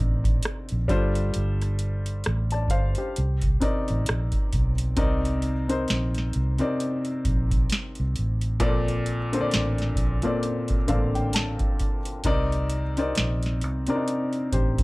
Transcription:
Already playing: upright piano C3 C4 D4 D#4 A#4 D5
0.00 fingered electric bass A1
0.24 kick, closed hi-hat
0.43 cross-stick, closed hi-hat
0.69 fingered electric bass A#1, closed hi-hat
0.88 fingered electric bass G1, upright piano G3 D4 F4 A4 C5, kick, closed hi-hat
1.15 closed hi-hat
1.34 fingered electric bass G1, closed hi-hat
1.62 cross-stick, closed hi-hat
1.79 closed hi-hat
2.06 closed hi-hat
2.24 fingered electric bass A1, cross-stick, closed hi-hat
2.51 upright piano D5 A5, cross-stick, closed hi-hat
2.68 fingered electric bass G1, upright piano C5 F5, kick, closed hi-hat
2.95 upright piano G4 C5, closed hi-hat
3.16 fingered electric bass C2, closed hi-hat
3.42 kick, closed hi-hat
3.60 upright piano C3 C4 D#4 A#4 D5, muted fingered electric bass stroke, kick, closed hi-hat
3.88 fingered electric bass A1, closed hi-hat
4.06 fingered electric bass A#1, cross-stick, closed hi-hat
4.32 kick, closed hi-hat
4.53 fingered electric bass B1, kick, closed hi-hat
4.78 closed hi-hat
4.96 fingered electric bass C2, upright piano C3 C4 D#4 A#4 D5, kick, closed hi-hat
5.25 closed hi-hat
5.42 closed hi-hat
5.68 upright piano C3 C4 D#4 A#4 C5, closed hi-hat
5.88 fingered electric bass A#1, snare, closed hi-hat
6.15 snare, closed hi-hat
6.33 fingered electric bass C2, closed hi-hat
6.58 upright piano C3 C4 D#4 A#4 D5, closed hi-hat
6.80 closed hi-hat
7.05 closed hi-hat
7.25 fingered electric bass A#1, kick, closed hi-hat
7.51 kick, closed hi-hat
7.70 snare, closed hi-hat
7.95 closed hi-hat
8.00 fingered electric bass C2
8.16 fingered electric bass A1, closed hi-hat
8.41 closed hi-hat
8.60 fingered electric bass A#1, upright piano A#2 A#3 C4 A4 D5, kick, closed hi-hat
8.88 closed hi-hat
9.06 closed hi-hat
9.32 upright piano D3 A#3 C4 A4 C5, closed hi-hat
9.41 upright piano D5
9.51 fingered electric bass A1, snare, closed hi-hat
9.78 snare, closed hi-hat
9.95 fingered electric bass A#1, kick, closed hi-hat
10.22 upright piano A#2 A#3 C4 A4 D5, closed hi-hat
10.43 closed hi-hat
10.68 muted fingered electric bass stroke, kick, closed hi-hat
10.87 fingered electric bass A1, upright piano D3 A#3 C4 A4 D5 F5, kick, closed hi-hat
11.15 upright piano G5, closed hi-hat
11.33 upright piano A5, snare, closed hi-hat
11.59 kick, closed hi-hat
11.80 kick, closed hi-hat
12.05 closed hi-hat
12.24 fingered electric bass C2, upright piano C3 C4 D#4 A#4 D5, kick, closed hi-hat
12.52 closed hi-hat
12.70 closed hi-hat
12.97 upright piano C3 C4 D#4 A#4 D5, closed hi-hat
13.15 fingered electric bass A#1, snare, closed hi-hat
13.43 snare, closed hi-hat
13.61 fingered electric bass C2, closed hi-hat
13.87 upright piano C3 C4 D4 A#4 D5, closed hi-hat
13.95 upright piano D#4
14.08 closed hi-hat
14.33 closed hi-hat
14.52 fingered electric bass A1, upright piano G4 C5, kick, closed hi-hat
14.78 kick, closed hi-hat

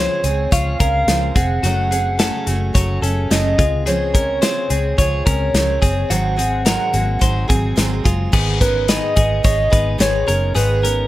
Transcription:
Already playing: steel-string acoustic guitar C#3 F3 G#3 C4, clean electric guitar F4 C5, soft synth lead C#5
0.00 steel-string acoustic guitar G#4
0.23 fingered electric bass C#2, steel-string acoustic guitar G#3 C4 G#4, clean electric guitar C4 G#4, closed hi-hat
0.51 fingered electric bass C#2, steel-string acoustic guitar F3 G#3 C4 G#4, clean electric guitar F4 C#5, soft synth lead F5, kick, closed hi-hat
0.79 fingered electric bass C#2, steel-string acoustic guitar G#3 C4 G#4, clean electric guitar C#4 A#4, kick, closed hi-hat
1.07 fingered electric bass C#2, steel-string acoustic guitar C#3 F3 G#3 C4 G#4, snare, closed hi-hat
1.35 fingered electric bass F1, steel-string acoustic guitar G#3 C4 G#4, clean electric guitar C4 G#4, soft synth lead F#5, kick, closed hi-hat
1.63 fingered electric bass F#1, steel-string acoustic guitar F#2 C#3 F#3 A3 C#4 G#4, clean electric guitar A3 F#4, closed hi-hat
1.91 steel-string acoustic guitar F#3 A3 C#4 G#4, clean electric guitar C4 G#4, closed hi-hat
2.19 steel-string acoustic guitar F#2 C#3 F#3 A3 C#4 G#4, clean electric guitar C#4 A4, snare, closed hi-hat
2.47 fingered electric bass F#1, steel-string acoustic guitar F#3 A3 C#4 G#4, clean electric guitar A3 F#4, snare, closed hi-hat
2.74 fingered electric bass F#1, steel-string acoustic guitar F#3 A3 C#4 G#4, clean electric guitar F#4 C#5, kick, closed hi-hat
3.02 fingered electric bass F#1, steel-string acoustic guitar A3 C#4 G#4, clean electric guitar C#4 A4, closed hi-hat
3.06 steel-string acoustic guitar F#3
3.30 fingered electric bass F#1, steel-string acoustic guitar F#2 C#3 F#3 A3 C#4 G#4, soft synth lead D#5, snare, closed hi-hat
3.58 fingered electric bass C#2, clean electric guitar G#3 F4, steel-string acoustic guitar G#3 C4 G#4, kick, closed hi-hat
3.86 steel-string acoustic guitar C#3 F3 G#3 C4 G#4, clean electric guitar C4 G#4, soft synth lead C#5, closed hi-hat
4.14 steel-string acoustic guitar G#3 C4 G#4, clean electric guitar C#4 A#4, kick, closed hi-hat
4.42 steel-string acoustic guitar C#3 F3 G#3 C4 G#4, clean electric guitar F4 C5, snare, closed hi-hat
4.70 fingered electric bass C#2, steel-string acoustic guitar G#3 C4 G#4, clean electric guitar C4 G#4, closed hi-hat
4.98 fingered electric bass C#2, steel-string acoustic guitar F3 G#3 C4 G#4, clean electric guitar F4 C#5, soft synth lead C#5, kick, closed hi-hat
5.26 fingered electric bass C#2, steel-string acoustic guitar G#3 C4 G#4, clean electric guitar C#4 A#4, kick, closed hi-hat
5.54 fingered electric bass C#2, steel-string acoustic guitar C#3 F3 G#3 C4 G#4, snare, closed hi-hat
5.82 fingered electric bass F#1, steel-string acoustic guitar G#3 C4 G#4, clean electric guitar C4 G#4, kick, closed hi-hat
6.10 fingered electric bass G#1, steel-string acoustic guitar G#2 D#3 F#3 G#3 C4 G#4, clean electric guitar C4 F#4, soft synth lead F#5, closed hi-hat
6.37 steel-string acoustic guitar F#3 G#3 C4 G#4, clean electric guitar C4 G#4, closed hi-hat
6.65 steel-string acoustic guitar G#2 D#3 F#3 G#3 C4 G#4, clean electric guitar D#4 A#4, snare, closed hi-hat
6.93 fingered electric bass G#1, steel-string acoustic guitar F#3 G#3 C4 G#4, clean electric guitar A#3 F#4, closed hi-hat
7.19 fingered electric bass G#1, steel-string acoustic guitar F#3 G#3 C4 G#4, clean electric guitar D#4 C5, kick, closed hi-hat
7.48 fingered electric bass G#1, steel-string acoustic guitar F#3 G#3 C4 G#4, clean electric guitar C4 G#4, kick, closed hi-hat
7.76 fingered electric bass G#1, steel-string acoustic guitar G#2 D#3 F#3 G#3 C4 G#4, snare, closed hi-hat
8.04 fingered electric bass F#1, steel-string acoustic guitar F#3 G#3 C4 G#4, clean electric guitar G#3 F4, kick, closed hi-hat
8.32 fingered electric bass G#1, steel-string acoustic guitar G#2 D#3 G#3 B3 D#4 G#4, clean electric guitar B3 G#4, kick, crash
8.60 steel-string acoustic guitar G#3 B3 D#4 G#4, clean electric guitar C#4 A#4, soft synth lead B4, kick, closed hi-hat
8.88 steel-string acoustic guitar G#2 D#3 G#3 B3 D#4 G#4, clean electric guitar D#4 B4, soft synth lead D#5, snare, closed hi-hat
9.15 fingered electric bass G#1, steel-string acoustic guitar G#3 B3 D#4 G#4, clean electric guitar B3 G#4, kick, closed hi-hat
9.43 fingered electric bass G#1, steel-string acoustic guitar G#3 B3 D#4 G#4, clean electric guitar G#4 C#5, soft synth lead D#5, kick, closed hi-hat
9.70 fingered electric bass G#1, steel-string acoustic guitar G#3 B3 D#4 G#4, clean electric guitar D#4 B4, kick, closed hi-hat
9.98 fingered electric bass G#1, steel-string acoustic guitar G#2 D#3 G#3 B3 D#4 G#4, soft synth lead C#5, snare, closed hi-hat
10.26 fingered electric bass F#1, steel-string acoustic guitar G#3 B3 D#4 G#4, clean electric guitar C#4 A#4, closed hi-hat
10.54 fingered electric bass G#1, steel-string acoustic guitar G#2 D#3 G#3 B3 D#4 G#4, clean electric guitar B3 G#4, soft synth lead B4, closed hi-hat
10.82 steel-string acoustic guitar G#3 B3 D#4 G#4, clean electric guitar C#4 A#4, closed hi-hat

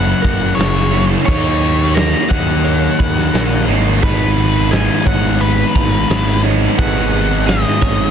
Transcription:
Already playing: picked electric bass F#1, overdriven electric guitar F#2 C#3 E3 A#3 E4, distorted electric guitar F#2 C#3 F#3, lead electric guitar F#5, clean electric guitar B5
0.22 picked electric bass F#1, clean electric guitar A#4, kick, open hi-hat
0.55 picked electric bass F#1, clean electric guitar G#4, lead electric guitar C#5
0.60 snare, open hi-hat
0.91 overdriven electric guitar C#3 E3 A#3 E4, clean electric guitar C#5, open hi-hat
0.96 overdriven electric guitar F#2
1.25 picked electric bass D#2, distorted electric guitar D#3 A#3 D#4, overdriven electric guitar D#3 F#3, clean electric guitar C#5, lead electric guitar C#5, kick, open hi-hat
1.30 overdriven electric guitar A#3 D#4
1.63 open hi-hat
1.94 clean electric guitar A#4, lead electric guitar A#5, snare, open hi-hat
2.29 picked electric bass D#2, distorted electric guitar D#3 A#3 D#4, clean electric guitar D#5, lead electric guitar F#5, kick, open hi-hat
2.64 clean electric guitar C#5, open hi-hat
2.99 picked electric bass D#2, clean electric guitar B5, kick, open hi-hat
3.18 snare
3.33 picked electric bass A#1, clean electric guitar A#4, snare, open hi-hat
3.68 picked electric bass G#1, overdriven electric guitar D#3 F#3 A#3 D#4, clean electric guitar C#5, open hi-hat
4.02 picked electric bass G#1, overdriven electric guitar G#2 D#3 G#3 B3 D#4, distorted electric guitar G#2 D#3 G#3, clean electric guitar B4, lead electric guitar B4, kick, open hi-hat
4.38 open hi-hat
4.71 clean electric guitar G#4, lead electric guitar G#5, snare, open hi-hat
5.06 picked electric bass G#1, distorted electric guitar G#2 D#3 G#3, clean electric guitar C#5, lead electric guitar F#5, kick, open hi-hat
5.40 clean electric guitar B4, lead electric guitar B4, open hi-hat
5.75 picked electric bass G#1, clean electric guitar A#5, kick, open hi-hat
6.10 picked electric bass G#1, clean electric guitar G#4, snare, open hi-hat
6.43 overdriven electric guitar G#2 D#3 G#3 B3 D#4, clean electric guitar C#5, open hi-hat
6.77 picked electric bass G#1, distorted electric guitar G#2 D#3 G#3, overdriven electric guitar G#2 D#3 G#3 B3 D#4, clean electric guitar B4, lead electric guitar F#5, kick, open hi-hat
7.14 open hi-hat
7.47 clean electric guitar G#4, lead electric guitar D#5, snare, open hi-hat
7.81 picked electric bass G#1, distorted electric guitar G#2 D#3 G#3, clean electric guitar C#5, kick, open hi-hat

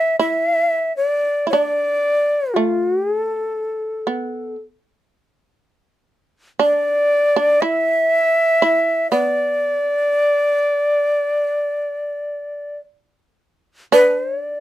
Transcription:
Already playing: shamisen D4, shakuhachi E5
0.19 shamisen E4, shakuhachi E5
0.82 shamisen D#4
0.97 shamisen D4, shakuhachi D5
1.47 shamisen E4, shakuhachi D5
1.53 shamisen D4
2.54 shamisen A3, shakuhachi F4
2.85 shakuhachi F#4
2.97 shakuhachi G4
3.08 shakuhachi G#4
3.20 shakuhachi A4
4.07 shamisen B3
6.59 shamisen D4, shakuhachi D5
7.36 shamisen D4
7.61 shamisen E4, shakuhachi E5
8.62 shamisen E4
9.11 shamisen B3, shakuhachi D5
9.70 shamisen C4
9.98 shamisen C#4
10.26 shamisen D4
13.92 shamisen D4, shakuhachi B4
14.18 shakuhachi C5
14.30 shakuhachi C#5
14.42 shakuhachi D5

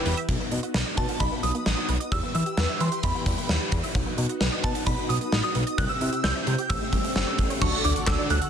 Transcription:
Already playing: string machine E3 E4 G4 B4, analog polysynth E4 G4 B4
0.06 analog synth bass E1, synth arpeggio sound B4, open hi-hat
0.17 synth arpeggio sound E5, closed hi-hat
0.29 analog synth bass B1, synth arpeggio sound F#3, string machine B3 D#4 F#4, kick, closed hi-hat
0.40 synth arpeggio sound B3
0.51 analog synth bass B2, synth arpeggio sound D#4, closed hi-hat
0.63 synth arpeggio sound F#4, closed hi-hat
0.74 analog synth bass B1, synth arpeggio sound B4, snare
0.86 synth arpeggio sound D#5
0.97 analog synth bass B2, synth arpeggio sound B4, synth bell A5, kick, closed hi-hat
1.09 synth arpeggio sound F#4, closed hi-hat
1.20 analog synth bass B1, synth arpeggio sound D#4, synth bell B5, kick, closed hi-hat
1.32 synth arpeggio sound B3
1.43 analog synth bass B1, synth arpeggio sound F#3, synth bell D#6, closed hi-hat
1.55 synth arpeggio sound B3, closed hi-hat
1.66 analog synth bass A1, synth arpeggio sound D#4, snare
1.77 synth arpeggio sound F#4
1.89 analog synth bass B1, synth arpeggio sound B4, closed hi-hat
2.00 synth arpeggio sound D#5, closed hi-hat
2.12 analog synth bass E2, string machine E3 E4 G4 B4, synth arpeggio sound G3, synth bell E6, kick, closed hi-hat
2.23 synth arpeggio sound B3
2.35 analog synth bass E3, synth arpeggio sound E4, synth bell E6, closed hi-hat
2.46 synth arpeggio sound G4, closed hi-hat
2.57 analog synth bass E2, synth arpeggio sound B4, snare
2.69 synth arpeggio sound E5
2.80 analog synth bass E3, synth arpeggio sound B4, synth bell C6, closed hi-hat
2.92 synth arpeggio sound G4, closed hi-hat
3.03 analog synth bass E2, synth arpeggio sound E4, synth bell B5, kick, closed hi-hat
3.15 synth arpeggio sound B3
3.26 analog synth bass E2, synth arpeggio sound G3, kick, closed hi-hat
3.38 synth arpeggio sound B3, closed hi-hat
3.49 analog synth bass D#2, synth arpeggio sound E4, snare
3.61 synth arpeggio sound G4
3.72 analog synth bass E2, synth arpeggio sound B4, kick, closed hi-hat
3.83 synth arpeggio sound E5, closed hi-hat
3.95 analog synth bass B1, synth arpeggio sound F#3, string machine B3 D#4 F#4, kick, closed hi-hat, swell
4.06 synth arpeggio sound B3
4.18 analog synth bass B2, synth arpeggio sound D#4, closed hi-hat
4.29 synth arpeggio sound F#4, closed hi-hat
4.41 analog synth bass B1, synth arpeggio sound B4, snare
4.52 synth arpeggio sound D#5
4.64 analog synth bass B2, synth arpeggio sound B4, synth bell A5, kick, closed hi-hat
4.75 synth arpeggio sound F#4, closed hi-hat
4.86 analog synth bass B1, synth arpeggio sound D#4, synth bell B5, kick, closed hi-hat
4.98 synth arpeggio sound B3
5.09 analog synth bass B1, synth arpeggio sound F#3, synth bell D#6, closed hi-hat
5.21 synth arpeggio sound B3, closed hi-hat
5.32 analog synth bass A1, synth arpeggio sound D#4, snare
5.44 synth arpeggio sound F#4, synth bell D#6
5.55 analog synth bass B1, synth arpeggio sound B4, closed hi-hat
5.67 synth arpeggio sound D#5, closed hi-hat
5.78 analog synth bass C2, string machine C3 C4 E4 G4, synth arpeggio sound G3, synth bell F#6, kick, closed hi-hat
5.89 synth arpeggio sound C4, synth bell E6
6.01 analog synth bass C3, synth arpeggio sound E4, closed hi-hat
6.12 synth arpeggio sound G4, closed hi-hat
6.24 analog synth bass C2, synth arpeggio sound C5, synth bell G6, snare
6.36 synth arpeggio sound E5
6.47 analog synth bass C3, synth arpeggio sound C5, closed hi-hat
6.58 synth arpeggio sound G4, closed hi-hat
6.69 analog synth bass A1, string machine A3 C#4, synth arpeggio sound C#4, synth bell E6, kick, closed hi-hat
6.81 synth arpeggio sound A3
6.93 analog synth bass A1, synth arpeggio sound G3, kick, closed hi-hat
7.04 synth arpeggio sound A3, closed hi-hat
7.16 analog synth bass G1, synth arpeggio sound C#4, snare
7.27 synth arpeggio sound G4
7.38 analog synth bass A1, synth arpeggio sound A4, kick, closed hi-hat
7.50 synth arpeggio sound C#5, closed hi-hat
7.62 analog synth bass D2, string machine D3 D4 F#4 A4, synth arpeggio sound F#3, analog polysynth D4 F#4 A4, synth bell C#6, kick, crash, impact
7.73 synth arpeggio sound A3
7.84 analog synth bass D2, synth arpeggio sound D4, synth bell D6, closed hi-hat
7.96 synth arpeggio sound F#4, closed hi-hat
8.07 analog synth bass D2, synth arpeggio sound A4, synth bell E6, kick, snare, clap
8.19 synth arpeggio sound D5
8.30 analog synth bass D2, synth arpeggio sound A4, synth bell F#6, closed hi-hat
8.42 synth arpeggio sound F#4, closed hi-hat

